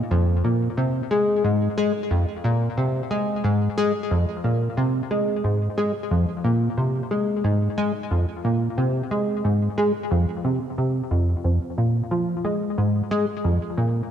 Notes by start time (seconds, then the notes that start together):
0.11 F2
0.44 A#2
0.77 C3
1.11 G#3
1.44 G#2
1.78 G#3
2.11 F2
2.44 A#2
2.78 C3
3.11 G#3
3.44 G#2
3.78 G#3
4.11 F2
4.44 A#2
4.77 C3
5.11 G#3
5.44 G#2
5.78 G#3
6.11 F2
6.44 A#2
6.77 C3
7.11 G#3
7.44 G#2
7.78 G#3
8.11 F2
8.44 A#2
8.78 C3
9.11 G#3
9.44 G#2
9.78 G#3
10.11 F2
10.44 C3
10.78 C3
11.11 F2
11.44 F2
11.78 A#2
12.11 F3
12.45 G#3
12.78 G#2
13.11 G#3
13.45 F2
13.78 A#2